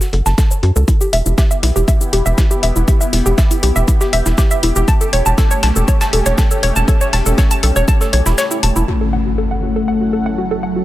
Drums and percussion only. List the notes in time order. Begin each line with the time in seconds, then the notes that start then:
0.01 snare, shaker
0.13 closed hi-hat
0.26 snare, shaker
0.38 kick, snare, closed hi-hat, shaker
0.51 shaker
0.63 closed hi-hat
0.76 shaker
0.88 kick, closed hi-hat, shaker
1.01 shaker
1.13 closed hi-hat, open hi-hat
1.26 shaker
1.38 kick, snare, closed hi-hat, shaker
1.51 shaker
1.63 snare, closed hi-hat, open hi-hat
1.76 shaker
1.88 kick, closed hi-hat, shaker
2.01 shaker
2.13 closed hi-hat, open hi-hat
2.26 shaker
2.38 kick, snare, closed hi-hat, shaker
2.51 shaker
2.63 closed hi-hat, open hi-hat
2.76 shaker
2.88 kick, closed hi-hat, shaker
3.01 shaker
3.13 open hi-hat
3.26 shaker
3.38 kick, snare, closed hi-hat, shaker
3.51 open hi-hat, shaker
3.63 closed hi-hat, open hi-hat
3.76 shaker
3.88 kick, closed hi-hat, shaker
4.01 snare, shaker
4.13 closed hi-hat, open hi-hat
4.26 snare, shaker
4.38 kick, snare, closed hi-hat, shaker
4.51 shaker
4.63 closed hi-hat, open hi-hat
4.76 shaker
4.88 kick, closed hi-hat, shaker
5.01 shaker
5.13 closed hi-hat, open hi-hat
5.26 shaker
5.38 kick, snare, closed hi-hat, shaker
5.51 shaker
5.63 snare, closed hi-hat, open hi-hat
5.76 shaker
5.88 kick, closed hi-hat, shaker
6.01 snare, closed hi-hat, shaker
6.13 open hi-hat
6.26 closed hi-hat, shaker
6.38 kick, snare, closed hi-hat, shaker
6.51 shaker
6.63 closed hi-hat, open hi-hat
6.76 shaker
6.88 kick, closed hi-hat, shaker
7.01 shaker
7.13 open hi-hat
7.26 shaker
7.38 kick, snare, closed hi-hat, shaker
7.51 open hi-hat, shaker
7.63 closed hi-hat, open hi-hat
7.76 shaker
7.88 kick, closed hi-hat, shaker
8.01 snare, shaker
8.13 closed hi-hat, open hi-hat
8.26 snare, shaker
8.38 snare, closed hi-hat, shaker
8.51 shaker
8.63 closed hi-hat, open hi-hat
8.76 shaker